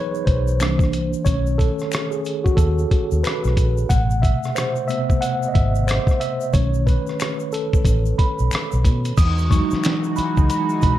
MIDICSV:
0, 0, Header, 1, 6, 480
1, 0, Start_track
1, 0, Key_signature, 4, "major"
1, 0, Tempo, 659341
1, 919, Time_signature, 4, 2, 24, 8
1, 8000, End_track
2, 0, Start_track
2, 0, Title_t, "Tine electric piano"
2, 0, Program_c, 0, 4
2, 0, Control_c, 0, 64, 127
2, 0, Note_on_c, 0, 52, 44
2, 0, Note_on_c, 0, 54, 47
2, 0, Note_on_c, 0, 59, 45
2, 0, Note_on_c, 0, 63, 54
2, 0, Note_on_c, 0, 68, 83
2, 0, Note_on_c, 0, 71, 84
2, 0, Note_on_c, 0, 73, 91
2, 182, Note_on_c, 0, 72, 78
2, 199, Note_off_c, 0, 73, 0
2, 435, Note_off_c, 0, 52, 0
2, 435, Note_on_c, 0, 52, 54
2, 438, Note_on_c, 0, 58, 43
2, 446, Note_on_c, 0, 62, 57
2, 450, Control_c, 0, 64, 0
2, 454, Note_off_c, 0, 54, 0
2, 454, Note_off_c, 0, 59, 0
2, 454, Note_off_c, 0, 71, 0
2, 455, Note_off_c, 0, 68, 0
2, 457, Note_off_c, 0, 63, 0
2, 564, Control_c, 0, 64, 127
2, 642, Note_off_c, 0, 72, 0
2, 893, Note_off_c, 0, 52, 0
2, 895, Note_off_c, 0, 58, 0
2, 899, Note_off_c, 0, 62, 0
2, 908, Note_on_c, 0, 73, 87
2, 914, Note_on_c, 0, 51, 54
2, 918, Note_on_c, 0, 57, 44
2, 922, Note_on_c, 0, 61, 61
2, 930, Control_c, 0, 64, 0
2, 1070, Control_c, 0, 64, 127
2, 1151, Note_on_c, 0, 69, 77
2, 1161, Note_off_c, 0, 73, 0
2, 1514, Note_off_c, 0, 69, 0
2, 1538, Note_on_c, 0, 68, 77
2, 1608, Note_off_c, 0, 51, 0
2, 1610, Note_off_c, 0, 57, 0
2, 1612, Note_off_c, 0, 61, 0
2, 1765, Note_off_c, 0, 68, 0
2, 1778, Note_on_c, 0, 66, 81
2, 1867, Note_on_c, 0, 69, 94
2, 1878, Note_off_c, 0, 66, 0
2, 2355, Note_on_c, 0, 71, 87
2, 2368, Note_off_c, 0, 69, 0
2, 2716, Note_off_c, 0, 71, 0
2, 2834, Note_on_c, 0, 78, 107
2, 2840, Note_on_c, 0, 48, 49
2, 2843, Note_on_c, 0, 57, 46
2, 2848, Control_c, 0, 64, 0
2, 2850, Note_on_c, 0, 47, 58
2, 2986, Control_c, 0, 64, 127
2, 3060, Note_off_c, 0, 78, 0
2, 3073, Note_on_c, 0, 76, 85
2, 3315, Note_on_c, 0, 72, 82
2, 3324, Note_off_c, 0, 76, 0
2, 3550, Note_off_c, 0, 48, 0
2, 3550, Note_on_c, 0, 76, 93
2, 3553, Note_off_c, 0, 57, 0
2, 3559, Note_on_c, 0, 48, 47
2, 3561, Note_on_c, 0, 57, 40
2, 3564, Note_off_c, 0, 72, 0
2, 3564, Note_on_c, 0, 59, 48
2, 3775, Note_off_c, 0, 48, 0
2, 3776, Note_off_c, 0, 57, 0
2, 3778, Note_off_c, 0, 59, 0
2, 3791, Note_on_c, 0, 78, 100
2, 3802, Note_off_c, 0, 76, 0
2, 3992, Note_on_c, 0, 75, 64
2, 4002, Note_off_c, 0, 78, 0
2, 4032, Note_on_c, 0, 76, 73
2, 4035, Note_off_c, 0, 75, 0
2, 4142, Note_off_c, 0, 76, 0
2, 4274, Note_on_c, 0, 72, 84
2, 4500, Note_off_c, 0, 72, 0
2, 4517, Note_on_c, 0, 76, 86
2, 4735, Note_off_c, 0, 47, 0
2, 4756, Note_on_c, 0, 73, 85
2, 4759, Note_on_c, 0, 51, 53
2, 4765, Note_off_c, 0, 76, 0
2, 4766, Note_on_c, 0, 57, 43
2, 4768, Control_c, 0, 64, 0
2, 4769, Note_on_c, 0, 61, 50
2, 4906, Control_c, 0, 64, 127
2, 4981, Note_off_c, 0, 73, 0
2, 4998, Note_on_c, 0, 71, 82
2, 5450, Note_off_c, 0, 51, 0
2, 5454, Note_off_c, 0, 57, 0
2, 5455, Note_off_c, 0, 61, 0
2, 5480, Note_on_c, 0, 69, 74
2, 5493, Note_off_c, 0, 71, 0
2, 5957, Note_on_c, 0, 83, 75
2, 6410, Note_off_c, 0, 69, 0
2, 6679, Note_on_c, 0, 87, 98
2, 6689, Control_c, 0, 64, 0
2, 6700, Note_off_c, 0, 83, 0
2, 6832, Control_c, 0, 64, 127
2, 6902, Note_off_c, 0, 87, 0
2, 6920, Note_on_c, 0, 85, 90
2, 6921, Note_on_c, 0, 54, 49
2, 6925, Note_on_c, 0, 56, 50
2, 6930, Note_on_c, 0, 63, 57
2, 7371, Note_off_c, 0, 85, 0
2, 7398, Note_on_c, 0, 83, 81
2, 7611, Note_off_c, 0, 54, 0
2, 7613, Note_off_c, 0, 56, 0
2, 7615, Note_off_c, 0, 63, 0
2, 7638, Note_off_c, 0, 83, 0
2, 7646, Note_on_c, 0, 83, 83
2, 7866, Note_off_c, 0, 83, 0
2, 7884, Note_on_c, 0, 83, 86
2, 8000, Note_off_c, 0, 83, 0
2, 8000, End_track
3, 0, Start_track
3, 0, Title_t, "Analog synth pad"
3, 0, Program_c, 1, 89
3, 6682, Note_on_c, 1, 63, 77
3, 6684, Note_on_c, 1, 52, 81
3, 6685, Note_on_c, 1, 56, 77
3, 6685, Note_on_c, 1, 66, 95
3, 8000, Note_off_c, 1, 52, 0
3, 8000, Note_off_c, 1, 56, 0
3, 8000, Note_off_c, 1, 63, 0
3, 8000, Note_off_c, 1, 66, 0
3, 8000, End_track
4, 0, Start_track
4, 0, Title_t, "Fingered electric bass"
4, 0, Program_c, 2, 33
4, 200, Note_on_c, 2, 35, 82
4, 447, Note_off_c, 2, 35, 0
4, 447, Note_on_c, 2, 36, 98
4, 824, Note_off_c, 2, 36, 0
4, 921, Note_on_c, 2, 35, 93
4, 1226, Note_off_c, 2, 35, 0
4, 1875, Note_on_c, 2, 39, 84
4, 2067, Note_off_c, 2, 39, 0
4, 2272, Note_on_c, 2, 39, 75
4, 2343, Note_off_c, 2, 39, 0
4, 2512, Note_on_c, 2, 35, 87
4, 2604, Note_off_c, 2, 35, 0
4, 2604, Note_on_c, 2, 34, 88
4, 2792, Note_off_c, 2, 34, 0
4, 2842, Note_on_c, 2, 33, 97
4, 3147, Note_off_c, 2, 33, 0
4, 4046, Note_on_c, 2, 32, 79
4, 4349, Note_off_c, 2, 32, 0
4, 4763, Note_on_c, 2, 35, 104
4, 5067, Note_off_c, 2, 35, 0
4, 5716, Note_on_c, 2, 33, 96
4, 5907, Note_off_c, 2, 33, 0
4, 6116, Note_on_c, 2, 35, 74
4, 6186, Note_off_c, 2, 35, 0
4, 6359, Note_on_c, 2, 35, 73
4, 6443, Note_on_c, 2, 47, 87
4, 6454, Note_off_c, 2, 35, 0
4, 6632, Note_off_c, 2, 47, 0
4, 6685, Note_on_c, 2, 40, 93
4, 6989, Note_off_c, 2, 40, 0
4, 7556, Note_on_c, 2, 37, 91
4, 7626, Note_off_c, 2, 37, 0
4, 7887, Note_on_c, 2, 35, 103
4, 8000, Note_off_c, 2, 35, 0
4, 8000, End_track
5, 0, Start_track
5, 0, Title_t, "Muted fingered electric bass strokes"
5, 5966, Note_on_c, 9, 29, 42
5, 6039, Note_off_c, 9, 29, 0
5, 6212, Note_on_c, 9, 29, 42
5, 6285, Note_off_c, 9, 29, 0
5, 7080, Note_on_c, 9, 29, 46
5, 7153, Note_off_c, 9, 29, 0
5, 7413, Note_on_c, 9, 29, 47
5, 7486, Note_off_c, 9, 29, 0
5, 8000, End_track
6, 0, Start_track
6, 0, Title_t, "Drums"
6, 107, Note_on_c, 9, 82, 35
6, 180, Note_off_c, 9, 82, 0
6, 197, Note_on_c, 9, 36, 92
6, 198, Note_on_c, 9, 42, 60
6, 270, Note_off_c, 9, 36, 0
6, 270, Note_off_c, 9, 42, 0
6, 345, Note_on_c, 9, 82, 43
6, 418, Note_off_c, 9, 82, 0
6, 437, Note_on_c, 9, 26, 70
6, 437, Note_on_c, 9, 82, 67
6, 441, Note_on_c, 9, 42, 71
6, 456, Note_on_c, 9, 37, 92
6, 510, Note_off_c, 9, 26, 0
6, 510, Note_off_c, 9, 82, 0
6, 514, Note_off_c, 9, 42, 0
6, 528, Note_off_c, 9, 37, 0
6, 576, Note_on_c, 9, 36, 92
6, 584, Note_on_c, 9, 82, 42
6, 608, Note_on_c, 9, 37, 30
6, 649, Note_off_c, 9, 36, 0
6, 657, Note_off_c, 9, 82, 0
6, 679, Note_on_c, 9, 82, 40
6, 680, Note_on_c, 9, 42, 69
6, 681, Note_off_c, 9, 37, 0
6, 751, Note_off_c, 9, 82, 0
6, 753, Note_off_c, 9, 42, 0
6, 825, Note_on_c, 9, 82, 44
6, 897, Note_off_c, 9, 82, 0
6, 915, Note_on_c, 9, 82, 65
6, 917, Note_on_c, 9, 36, 113
6, 923, Note_on_c, 9, 42, 82
6, 988, Note_off_c, 9, 82, 0
6, 990, Note_off_c, 9, 36, 0
6, 995, Note_off_c, 9, 42, 0
6, 1066, Note_on_c, 9, 82, 46
6, 1139, Note_off_c, 9, 82, 0
6, 1159, Note_on_c, 9, 36, 90
6, 1162, Note_on_c, 9, 82, 38
6, 1171, Note_on_c, 9, 42, 55
6, 1232, Note_off_c, 9, 36, 0
6, 1235, Note_off_c, 9, 82, 0
6, 1244, Note_off_c, 9, 42, 0
6, 1302, Note_on_c, 9, 82, 40
6, 1322, Note_on_c, 9, 37, 30
6, 1375, Note_off_c, 9, 82, 0
6, 1395, Note_off_c, 9, 37, 0
6, 1395, Note_on_c, 9, 26, 67
6, 1395, Note_on_c, 9, 82, 67
6, 1407, Note_on_c, 9, 42, 85
6, 1417, Note_on_c, 9, 37, 106
6, 1468, Note_off_c, 9, 26, 0
6, 1468, Note_off_c, 9, 82, 0
6, 1480, Note_off_c, 9, 42, 0
6, 1490, Note_off_c, 9, 37, 0
6, 1540, Note_on_c, 9, 82, 35
6, 1613, Note_off_c, 9, 82, 0
6, 1637, Note_on_c, 9, 82, 42
6, 1648, Note_on_c, 9, 42, 51
6, 1710, Note_off_c, 9, 82, 0
6, 1720, Note_off_c, 9, 42, 0
6, 1789, Note_on_c, 9, 36, 74
6, 1792, Note_on_c, 9, 82, 40
6, 1862, Note_off_c, 9, 36, 0
6, 1865, Note_off_c, 9, 82, 0
6, 1871, Note_on_c, 9, 36, 88
6, 1876, Note_on_c, 9, 42, 66
6, 1882, Note_on_c, 9, 82, 61
6, 1944, Note_off_c, 9, 36, 0
6, 1949, Note_off_c, 9, 42, 0
6, 1955, Note_off_c, 9, 82, 0
6, 2027, Note_on_c, 9, 82, 37
6, 2100, Note_off_c, 9, 82, 0
6, 2121, Note_on_c, 9, 36, 83
6, 2121, Note_on_c, 9, 42, 55
6, 2194, Note_off_c, 9, 36, 0
6, 2194, Note_off_c, 9, 42, 0
6, 2266, Note_on_c, 9, 82, 44
6, 2339, Note_off_c, 9, 82, 0
6, 2360, Note_on_c, 9, 26, 65
6, 2360, Note_on_c, 9, 82, 63
6, 2366, Note_on_c, 9, 42, 77
6, 2381, Note_on_c, 9, 37, 94
6, 2433, Note_off_c, 9, 26, 0
6, 2433, Note_off_c, 9, 82, 0
6, 2439, Note_off_c, 9, 42, 0
6, 2454, Note_off_c, 9, 37, 0
6, 2505, Note_on_c, 9, 82, 45
6, 2531, Note_on_c, 9, 37, 32
6, 2578, Note_off_c, 9, 82, 0
6, 2599, Note_on_c, 9, 36, 82
6, 2601, Note_on_c, 9, 42, 71
6, 2603, Note_off_c, 9, 37, 0
6, 2603, Note_on_c, 9, 82, 42
6, 2671, Note_off_c, 9, 36, 0
6, 2674, Note_off_c, 9, 42, 0
6, 2676, Note_off_c, 9, 82, 0
6, 2747, Note_on_c, 9, 82, 48
6, 2820, Note_off_c, 9, 82, 0
6, 2839, Note_on_c, 9, 36, 112
6, 2839, Note_on_c, 9, 82, 68
6, 2843, Note_on_c, 9, 42, 78
6, 2912, Note_off_c, 9, 36, 0
6, 2912, Note_off_c, 9, 82, 0
6, 2916, Note_off_c, 9, 42, 0
6, 2988, Note_on_c, 9, 82, 46
6, 3061, Note_off_c, 9, 82, 0
6, 3080, Note_on_c, 9, 36, 85
6, 3084, Note_on_c, 9, 82, 40
6, 3092, Note_on_c, 9, 42, 57
6, 3153, Note_off_c, 9, 36, 0
6, 3156, Note_off_c, 9, 82, 0
6, 3164, Note_off_c, 9, 42, 0
6, 3228, Note_on_c, 9, 82, 45
6, 3242, Note_on_c, 9, 37, 32
6, 3300, Note_off_c, 9, 82, 0
6, 3315, Note_off_c, 9, 37, 0
6, 3321, Note_on_c, 9, 26, 66
6, 3321, Note_on_c, 9, 82, 65
6, 3326, Note_on_c, 9, 42, 85
6, 3336, Note_on_c, 9, 37, 92
6, 3393, Note_off_c, 9, 26, 0
6, 3393, Note_off_c, 9, 82, 0
6, 3399, Note_off_c, 9, 42, 0
6, 3409, Note_off_c, 9, 37, 0
6, 3463, Note_on_c, 9, 82, 35
6, 3535, Note_off_c, 9, 82, 0
6, 3556, Note_on_c, 9, 82, 46
6, 3571, Note_on_c, 9, 42, 54
6, 3629, Note_off_c, 9, 82, 0
6, 3644, Note_off_c, 9, 42, 0
6, 3711, Note_on_c, 9, 36, 76
6, 3713, Note_on_c, 9, 82, 46
6, 3783, Note_off_c, 9, 36, 0
6, 3786, Note_off_c, 9, 82, 0
6, 3800, Note_on_c, 9, 42, 71
6, 3805, Note_on_c, 9, 82, 51
6, 3873, Note_off_c, 9, 42, 0
6, 3877, Note_off_c, 9, 82, 0
6, 3951, Note_on_c, 9, 82, 43
6, 4023, Note_off_c, 9, 82, 0
6, 4041, Note_on_c, 9, 36, 87
6, 4042, Note_on_c, 9, 42, 59
6, 4114, Note_off_c, 9, 36, 0
6, 4115, Note_off_c, 9, 42, 0
6, 4187, Note_on_c, 9, 82, 43
6, 4260, Note_off_c, 9, 82, 0
6, 4281, Note_on_c, 9, 26, 62
6, 4281, Note_on_c, 9, 82, 72
6, 4287, Note_on_c, 9, 42, 84
6, 4302, Note_on_c, 9, 37, 91
6, 4354, Note_off_c, 9, 26, 0
6, 4354, Note_off_c, 9, 82, 0
6, 4360, Note_off_c, 9, 42, 0
6, 4375, Note_off_c, 9, 37, 0
6, 4419, Note_on_c, 9, 36, 91
6, 4427, Note_on_c, 9, 82, 41
6, 4450, Note_on_c, 9, 37, 33
6, 4491, Note_off_c, 9, 36, 0
6, 4500, Note_off_c, 9, 82, 0
6, 4521, Note_on_c, 9, 42, 72
6, 4523, Note_off_c, 9, 37, 0
6, 4525, Note_on_c, 9, 82, 43
6, 4594, Note_off_c, 9, 42, 0
6, 4597, Note_off_c, 9, 82, 0
6, 4663, Note_on_c, 9, 82, 45
6, 4736, Note_off_c, 9, 82, 0
6, 4756, Note_on_c, 9, 82, 66
6, 4759, Note_on_c, 9, 36, 109
6, 4765, Note_on_c, 9, 42, 75
6, 4829, Note_off_c, 9, 82, 0
6, 4832, Note_off_c, 9, 36, 0
6, 4838, Note_off_c, 9, 42, 0
6, 4906, Note_on_c, 9, 82, 45
6, 4979, Note_off_c, 9, 82, 0
6, 5000, Note_on_c, 9, 36, 89
6, 5004, Note_on_c, 9, 82, 38
6, 5013, Note_on_c, 9, 42, 52
6, 5073, Note_off_c, 9, 36, 0
6, 5076, Note_off_c, 9, 82, 0
6, 5086, Note_off_c, 9, 42, 0
6, 5145, Note_on_c, 9, 82, 41
6, 5164, Note_on_c, 9, 37, 30
6, 5218, Note_off_c, 9, 82, 0
6, 5237, Note_off_c, 9, 37, 0
6, 5240, Note_on_c, 9, 26, 64
6, 5240, Note_on_c, 9, 82, 63
6, 5247, Note_on_c, 9, 42, 92
6, 5257, Note_on_c, 9, 37, 94
6, 5313, Note_off_c, 9, 26, 0
6, 5313, Note_off_c, 9, 82, 0
6, 5319, Note_off_c, 9, 42, 0
6, 5330, Note_off_c, 9, 37, 0
6, 5384, Note_on_c, 9, 82, 36
6, 5457, Note_off_c, 9, 82, 0
6, 5475, Note_on_c, 9, 82, 44
6, 5490, Note_on_c, 9, 42, 62
6, 5548, Note_off_c, 9, 82, 0
6, 5563, Note_off_c, 9, 42, 0
6, 5630, Note_on_c, 9, 36, 81
6, 5634, Note_on_c, 9, 82, 42
6, 5703, Note_off_c, 9, 36, 0
6, 5707, Note_off_c, 9, 82, 0
6, 5712, Note_on_c, 9, 36, 87
6, 5717, Note_on_c, 9, 42, 70
6, 5724, Note_on_c, 9, 82, 62
6, 5784, Note_off_c, 9, 36, 0
6, 5790, Note_off_c, 9, 42, 0
6, 5797, Note_off_c, 9, 82, 0
6, 5866, Note_on_c, 9, 82, 40
6, 5939, Note_off_c, 9, 82, 0
6, 5961, Note_on_c, 9, 36, 86
6, 5962, Note_on_c, 9, 42, 59
6, 6034, Note_off_c, 9, 36, 0
6, 6035, Note_off_c, 9, 42, 0
6, 6106, Note_on_c, 9, 82, 45
6, 6179, Note_off_c, 9, 82, 0
6, 6197, Note_on_c, 9, 26, 58
6, 6197, Note_on_c, 9, 82, 61
6, 6209, Note_on_c, 9, 42, 79
6, 6224, Note_on_c, 9, 37, 108
6, 6270, Note_off_c, 9, 26, 0
6, 6270, Note_off_c, 9, 82, 0
6, 6282, Note_off_c, 9, 42, 0
6, 6297, Note_off_c, 9, 37, 0
6, 6345, Note_on_c, 9, 82, 43
6, 6418, Note_off_c, 9, 82, 0
6, 6439, Note_on_c, 9, 36, 81
6, 6443, Note_on_c, 9, 42, 66
6, 6445, Note_on_c, 9, 82, 39
6, 6512, Note_off_c, 9, 36, 0
6, 6516, Note_off_c, 9, 42, 0
6, 6518, Note_off_c, 9, 82, 0
6, 6587, Note_on_c, 9, 82, 48
6, 6590, Note_on_c, 9, 42, 54
6, 6660, Note_off_c, 9, 82, 0
6, 6663, Note_off_c, 9, 42, 0
6, 6678, Note_on_c, 9, 82, 71
6, 6680, Note_on_c, 9, 36, 127
6, 6681, Note_on_c, 9, 49, 100
6, 6687, Note_on_c, 9, 42, 94
6, 6751, Note_off_c, 9, 82, 0
6, 6753, Note_off_c, 9, 36, 0
6, 6754, Note_off_c, 9, 49, 0
6, 6760, Note_off_c, 9, 42, 0
6, 6830, Note_on_c, 9, 82, 54
6, 6903, Note_off_c, 9, 82, 0
6, 6921, Note_on_c, 9, 36, 99
6, 6928, Note_on_c, 9, 82, 45
6, 6933, Note_on_c, 9, 42, 64
6, 6994, Note_off_c, 9, 36, 0
6, 7001, Note_off_c, 9, 82, 0
6, 7006, Note_off_c, 9, 42, 0
6, 7067, Note_on_c, 9, 82, 47
6, 7084, Note_on_c, 9, 38, 38
6, 7140, Note_off_c, 9, 82, 0
6, 7157, Note_off_c, 9, 38, 0
6, 7161, Note_on_c, 9, 26, 65
6, 7161, Note_on_c, 9, 82, 79
6, 7169, Note_on_c, 9, 42, 108
6, 7179, Note_on_c, 9, 38, 110
6, 7233, Note_off_c, 9, 26, 0
6, 7233, Note_off_c, 9, 82, 0
6, 7242, Note_off_c, 9, 42, 0
6, 7252, Note_off_c, 9, 38, 0
6, 7306, Note_on_c, 9, 82, 41
6, 7379, Note_off_c, 9, 82, 0
6, 7397, Note_on_c, 9, 82, 52
6, 7414, Note_on_c, 9, 42, 61
6, 7470, Note_off_c, 9, 82, 0
6, 7486, Note_off_c, 9, 42, 0
6, 7550, Note_on_c, 9, 82, 44
6, 7552, Note_on_c, 9, 36, 88
6, 7623, Note_off_c, 9, 82, 0
6, 7625, Note_off_c, 9, 36, 0
6, 7642, Note_on_c, 9, 42, 91
6, 7643, Note_on_c, 9, 82, 62
6, 7714, Note_off_c, 9, 42, 0
6, 7715, Note_off_c, 9, 82, 0
6, 7785, Note_on_c, 9, 82, 42
6, 7858, Note_off_c, 9, 82, 0
6, 7874, Note_on_c, 9, 82, 52
6, 7883, Note_on_c, 9, 36, 100
6, 7885, Note_on_c, 9, 42, 73
6, 7947, Note_off_c, 9, 82, 0
6, 7956, Note_off_c, 9, 36, 0
6, 7958, Note_off_c, 9, 42, 0
6, 8000, End_track
0, 0, End_of_file